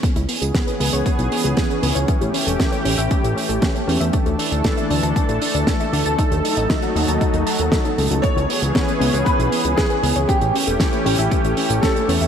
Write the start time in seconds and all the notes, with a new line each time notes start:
0.03 E3 B3 C#4 G#4, kick, closed hi-hat
0.16 C#2 E4, closed hi-hat
0.29 B3, open hi-hat
0.41 C#2 G#4, closed hi-hat
0.54 B3, kick, snare, closed hi-hat
0.67 B4, closed hi-hat
0.80 C#2 B3, open hi-hat
0.93 C#2 C#5, closed hi-hat
1.06 B3, kick, closed hi-hat
1.18 B1 E4, closed hi-hat
1.31 B3, open hi-hat
1.44 C#2 G#4, closed hi-hat
1.57 B3, kick, snare, closed hi-hat
1.70 B4, closed hi-hat
1.83 C#2 B3, open hi-hat
1.95 C#2 C#5, closed hi-hat
2.08 A3 C#4 G4, kick, closed hi-hat
2.21 A1 G4, closed hi-hat
2.34 C#4, open hi-hat
2.47 E1 A4, closed hi-hat
2.59 C#4, kick, snare, closed hi-hat
2.72 C#5, closed hi-hat
2.85 A1 C#4, open hi-hat
2.98 A1 E5, closed hi-hat
3.11 C#4, kick, closed hi-hat
3.24 A1 G4, closed hi-hat
3.36 C#4, open hi-hat
3.49 A1 A4, closed hi-hat
3.62 C#4, kick, snare, closed hi-hat
3.75 C#5, closed hi-hat
3.87 E2 C#4, open hi-hat
4.00 E2 E5, closed hi-hat
4.13 E3 D4 A4, kick, closed hi-hat
4.26 D2 A4, closed hi-hat
4.39 D4, open hi-hat
4.52 D2 D5, closed hi-hat
4.64 D4, kick, snare, closed hi-hat
4.77 E5, closed hi-hat
4.90 D2 D4, open hi-hat
5.03 D2 A5, closed hi-hat
5.16 D4, kick, closed hi-hat
5.29 A1 A4, closed hi-hat
5.42 D4, open hi-hat
5.54 D2 D5, closed hi-hat
5.67 D4, kick, snare, closed hi-hat
5.80 E5, closed hi-hat
5.93 D2 D4, open hi-hat
6.06 D2 A5, closed hi-hat
6.18 F#3 D#4, kick, closed hi-hat
6.31 D#2 A4, closed hi-hat
6.44 D#4, open hi-hat
6.57 A1 D#5, closed hi-hat
6.70 D#4, kick, snare, closed hi-hat
6.82 F#5, closed hi-hat
6.96 D#2 D#4, open hi-hat
7.08 D#2 A5, closed hi-hat
7.21 D#4, kick, closed hi-hat
7.34 D#2 A4, closed hi-hat
7.47 A5, open hi-hat
7.59 D#2 A4, closed hi-hat
7.72 A4, kick, snare, closed hi-hat
7.85 D#4, closed hi-hat
7.98 C#2 A4, open hi-hat
8.11 C#2 F#4, closed hi-hat
8.22 E3 B3 C#4 G#4 C#5, kick, closed hi-hat
8.36 C#2 E4, closed hi-hat
8.49 B3, open hi-hat
8.62 C#2 G#4, closed hi-hat
8.75 B3, kick, snare, closed hi-hat
8.88 B4, closed hi-hat
9.01 C#2 B3, open hi-hat
9.13 C#2 C#5, closed hi-hat
9.25 B3 B4, kick, closed hi-hat
9.39 B1 E4, closed hi-hat
9.52 B3, open hi-hat
9.64 C#2 G#4, closed hi-hat
9.76 B3 G#4, kick, snare, closed hi-hat
9.90 B4, closed hi-hat
10.03 C#2 B3, open hi-hat
10.16 C#2 C#5, closed hi-hat
10.28 E3 A3 C#4 G4, kick, closed hi-hat
10.41 A1 G4, closed hi-hat
10.54 C#4, open hi-hat
10.67 E1 A4, closed hi-hat
10.80 C#4, kick, snare, closed hi-hat
10.93 C#5, closed hi-hat
11.04 A1 C#4 G4, open hi-hat
11.19 A1 E5, closed hi-hat
11.31 C#4, kick, closed hi-hat
11.44 A1 G4, closed hi-hat
11.57 C#4, open hi-hat
11.70 A1 A4, closed hi-hat
11.81 C#4 A4, kick, snare, closed hi-hat
11.96 C#5, closed hi-hat
12.08 E2 C#4, open hi-hat
12.21 E2 E5, closed hi-hat